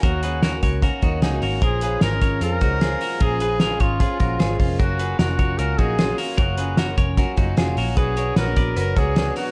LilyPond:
<<
  \new Staff \with { instrumentName = "Clean electric guitar" } { \time 4/4 \key ais \phrygian \tempo 4 = 151 <fis' ais'>8 <gis' b'>8 <fis' ais'>8 <ais' cis''>8 <fis' ais'>8 <dis' fis'>8 <dis' gis'>8 <fis' ais'>8 | <eis' ais'>8 <gis' b'>8 <eis' ais'>8 <ais' cis''>8 <eis' ais'>8 <dis' fis'>8 <eis' gis'>8 <fis' ais'>8 | <eis' ais'>8 <gis' b'>8 <eis' ais'>8 <ais' cis''>8 <eis' gis'>8 <fis' ais'>8 <eis' gis'>8 <cis' eis'>8 | <fis' ais'>8 <gis' b'>8 <fis' ais'>8 <ais' cis''>8 <fis' ais'>8 <dis' fis'>8 <eis' gis'>8 <fis' ais'>8 |
<fis' ais'>8 <gis' b'>8 <fis' ais'>8 <ais' cis''>8 <fis' ais'>8 <dis' fis'>8 <eis' gis'>8 <fis' ais'>8 | <fis' b'>8 <ais' cis''>8 <fis' b'>8 <b' d''>8 <fis' b'>8 <d' fis'>8 <d' gis'>8 <fis' ais'>8 | }
  \new Staff \with { instrumentName = "Trumpet" } { \time 4/4 \key ais \phrygian fis'4. r2 r8 | gis'4 ais'4 ais'2 | gis'4. eis'2 r8 | fis'4 fis'4 ais'8 gis'4 r8 |
fis'4. r2 r8 | gis'4 ais'4 ais'8 gis'4 fis'8 | }
  \new Staff \with { instrumentName = "Twelve-string acoustic guitar" } { \time 4/4 \key ais \phrygian <dis ais cis' fis'>8 <dis ais cis' fis'>8. <ais cis' fis'>8. <dis ais cis' fis'>8 <dis ais cis' fis'>8 <dis ais cis' fis'>4 | <ais, eis gis cis' eis'>8 <eis gis cis' eis'>8. <gis cis' eis'>8. <eis gis cis' eis'>8 <eis gis cis' eis'>8 <ais, eis gis cis' eis'>4 | <ais, eis gis cis' eis'>8 <eis gis cis' eis'>8. <gis cis' eis'>8. <eis gis cis' eis'>8 <eis gis cis' eis'>8 <ais, eis gis cis' eis'>4 | <fis ais cis' eis'>8 <fis ais cis' eis'>8. <ais cis' eis'>8. <fis ais cis' eis'>8 <fis ais cis' eis'>8 <fis ais cis' eis'>4 |
<fis ais cis' eis'>8 <fis ais cis' eis'>8. <ais cis' eis'>8. <fis ais cis' eis'>8 <fis ais cis' eis'>8 <fis ais cis' eis'>4 | <b, fis b d' fis' cis''>8 <b d' fis' cis''>8. <b d' fis' cis''>8. <b d' fis' cis''>8 <b d' fis' cis''>8 <b, fis b d' fis' cis''>4 | }
  \new Staff \with { instrumentName = "Picked electric bass" } { \clef bass \time 4/4 \key ais \phrygian dis,4. cis,8. r16 dis,8 cis,8 gis,,8 | ais,,4 gis,,8 gis,,8 eis,8 cis,4 r8 | ais,,4. gis,,8. r16 ais,,8 gis,,8 eis,,8 | fis,,4 eis,,8 eis,,8 cis,8 ais,,4 r8 |
fis,,4. eis,,8. r16 fis,,8 eis,,8 ais,,8 | b,,4 ais,,8 ais,,8 fis,,8 cis,4 r8 | }
  \new DrumStaff \with { instrumentName = "Drums" } \drummode { \time 4/4 <hh bd>8 hh8 <hh sn>8 <hh bd>8 <hh bd>8 <hh bd>8 <hh sn>8 hho8 | <hh bd>8 hh8 <hh sn>8 <hh bd>8 hh8 <hh bd>8 <hh sn>8 hho8 | <hh bd>8 hh8 <hh sn>8 <hh bd>8 <hh bd>8 <hh bd>8 <hh sn>8 <hho bd>8 | <hh bd>8 hh8 <hh sn>8 <hh bd>8 hh8 <hh bd>8 <hh sn>8 hho8 |
<hh bd>8 hh8 <hh sn>8 <hh bd>8 <hh bd>8 <hh bd>8 <hh sn>8 hho8 | <hh bd>8 hh8 <hh sn>8 <hh bd>8 hh8 <hh bd>8 <hh sn>8 hho8 | }
>>